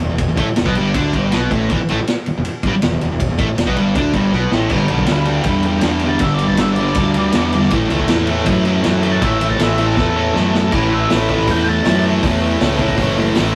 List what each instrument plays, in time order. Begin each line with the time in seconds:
0.04 fingered electric bass E1
0.09 fingered electric bass E1, distorted electric guitar E2
0.18 kick, ride
0.28 fingered electric bass E1, distorted electric guitar E2
0.36 fingered electric bass A1, distorted electric guitar A2 A3, kick, ride
0.45 muted distorted electric guitar stroke
0.50 muted fingered electric bass stroke
0.56 fingered electric bass E1, distorted electric guitar E2, snare, ride
0.64 fingered electric bass B1, distorted electric guitar B2 B3, kick
0.75 fingered electric bass G1, distorted electric guitar G2 G3, ride
0.94 fingered electric bass D2, distorted electric guitar D3 D4, kick, ride
1.13 fingered electric bass G1, distorted electric guitar G2 G3, kick, ride
1.32 fingered electric bass B1, distorted electric guitar B2 B3, snare, ride
1.51 fingered electric bass A1, distorted electric guitar A2 A3, kick, ride
1.70 fingered electric bass E1, distorted electric guitar E2 E3, kick, ride
1.80 muted fingered electric bass stroke, muted distorted electric guitar stroke
1.89 fingered electric bass A1, distorted electric guitar A2 A3, ride
2.00 muted distorted electric guitar stroke, muted fingered electric bass stroke
2.07 snare, ride
2.26 muted distorted electric guitar stroke, muted fingered electric bass stroke, ride
2.37 fingered electric bass E1, distorted electric guitar E2
2.45 muted distorted electric guitar stroke, muted fingered electric bass stroke, ride
2.63 fingered electric bass G1, distorted electric guitar G2 G3, kick, ride
2.74 muted fingered electric bass stroke, muted distorted electric guitar stroke
2.82 fingered electric bass E1, distorted electric guitar E2, snare, ride
2.91 fingered electric bass E1, distorted electric guitar E2
3.01 fingered electric bass E1, distorted electric guitar E2, ride
3.11 fingered electric bass E1, distorted electric guitar E2
3.20 kick, ride
3.29 fingered electric bass E1, distorted electric guitar E2
3.38 fingered electric bass A1, distorted electric guitar A2 A3, kick, ride
3.47 muted fingered electric bass stroke, muted distorted electric guitar stroke
3.55 fingered electric bass E1, distorted electric guitar E2, snare, ride
3.65 fingered electric bass B1, distorted electric guitar B2 B3, kick
3.75 fingered electric bass G1, distorted electric guitar G2 G3, ride
3.94 fingered electric bass D2, distorted electric guitar D3 D4, kick, ride
4.13 fingered electric bass G1, distorted electric guitar G2 G3, kick, ride
4.32 fingered electric bass B1, distorted electric guitar B2 B3, snare
4.51 fingered electric bass A1, distorted electric guitar A2 A3, snare
4.70 fingered electric bass G1, distorted electric guitar G2 D3 G3, kick, crash
4.88 fingered electric bass B1, distorted electric guitar G2 D3 G3, ride
4.98 kick
5.06 fingered electric bass D2, distorted electric guitar G2 D3 G3, lead electric guitar B4, snare, ride
5.25 distorted electric guitar G2 D3 G3, lead electric guitar G4, ride
5.44 fingered electric bass E2, distorted electric guitar G2 D3 G3, lead electric guitar B4, kick, ride
5.63 distorted electric guitar G2 D3, lead electric guitar G4, ride
5.67 distorted electric guitar G3
5.81 fingered electric bass E2, distorted electric guitar G2 D3, snare, ride
5.86 distorted electric guitar G3
6.00 distorted electric guitar G2, ride
6.04 distorted electric guitar D3 G3
6.08 lead electric guitar A5
6.19 fingered electric bass G1, lead electric guitar E5, kick, ride
6.23 distorted electric guitar G2 D3 G3
6.34 lead electric guitar D5
6.39 distorted electric guitar G2, ride
6.43 distorted electric guitar D3 G3
6.47 lead electric guitar A5, kick
6.57 fingered electric bass G1, distorted electric guitar G2 D3 G3, lead electric guitar E5, snare, ride
6.72 lead electric guitar D5, ride
6.79 distorted electric guitar G2 D3 G3
6.84 lead electric guitar D5, snare
6.95 fingered electric bass D2, distorted electric guitar G2, kick, ride
6.99 distorted electric guitar D3 G3
7.14 distorted electric guitar G2 D3, ride
7.18 distorted electric guitar G3
7.32 fingered electric bass E2, distorted electric guitar G2, snare, ride
7.37 distorted electric guitar D3 G3
7.53 distorted electric guitar G2 D3 G3, ride
7.63 snare
7.71 fingered electric bass A1, distorted electric guitar A2 E3 A3, kick, ride
7.90 fingered electric bass C#2, distorted electric guitar A2 E3 A3, ride
7.99 kick
8.08 fingered electric bass E2, distorted electric guitar A2 E3 A3, snare, ride
8.27 distorted electric guitar A2 E3, ride
8.31 distorted electric guitar A3
8.37 snare
8.46 fingered electric bass F#2, distorted electric guitar A2 E3 A3, kick, ride
8.65 distorted electric guitar A2 E3 A3, ride
8.84 fingered electric bass F#2, distorted electric guitar A2 E3 A3, snare, ride
9.02 distorted electric guitar A2 E3 A3, ride
9.12 lead electric guitar A5
9.21 fingered electric bass A1, distorted electric guitar A2 E3 A3, lead electric guitar E5, kick, ride
9.38 distorted electric guitar A2 E3, lead electric guitar E5, ride
9.43 distorted electric guitar A3
9.49 lead electric guitar A5, kick
9.59 fingered electric bass A1, distorted electric guitar A2 E3 A3, lead electric guitar E5, snare, ride
9.74 lead electric guitar E5
9.78 distorted electric guitar A2 E3 A3, ride
9.86 lead electric guitar A4, snare
9.97 fingered electric bass E2, distorted electric guitar A2 E3 A3, kick, snare
10.16 distorted electric guitar A2 E3 A3
10.35 fingered electric bass F#2, distorted electric guitar A2 E3 A3, snare
10.54 distorted electric guitar A2 E3 A3, snare
10.72 fingered electric bass A1, distorted electric guitar A2 E3, lead electric guitar B4, kick, crash
10.76 distorted electric guitar A3
10.90 distorted electric guitar A3, lead electric guitar E5
10.95 distorted electric guitar E3
11.09 fingered electric bass A1, distorted electric guitar A2 E3, lead electric guitar B4, snare, open hi-hat
11.14 distorted electric guitar A3
11.29 distorted electric guitar E3 A3, kick
11.34 distorted electric guitar A2
11.38 kick
11.47 fingered electric bass E2, distorted electric guitar A2 E3, lead electric guitar G5, kick, open hi-hat
11.53 distorted electric guitar A3
11.66 distorted electric guitar E3 A3, lead electric guitar A5
11.71 distorted electric guitar A2
11.85 fingered electric bass F#2, distorted electric guitar A2 E3, snare, open hi-hat
11.90 distorted electric guitar A3
12.06 distorted electric guitar A3
12.10 distorted electric guitar E3
12.23 fingered electric bass E2, distorted electric guitar A2 E3, kick, open hi-hat
12.28 distorted electric guitar A3
12.41 distorted electric guitar A3
12.46 distorted electric guitar E3
12.60 fingered electric bass C#2, distorted electric guitar A2 E3, snare, open hi-hat
12.64 distorted electric guitar A3
12.78 distorted electric guitar A2 E3 A3, kick
12.88 kick
12.97 fingered electric bass F#1, distorted electric guitar A2 E3, kick, open hi-hat
13.01 distorted electric guitar A3
13.15 distorted electric guitar E3 A3
13.20 distorted electric guitar A2
13.35 fingered electric bass A1, distorted electric guitar A2 E3, snare, open hi-hat
13.39 distorted electric guitar A3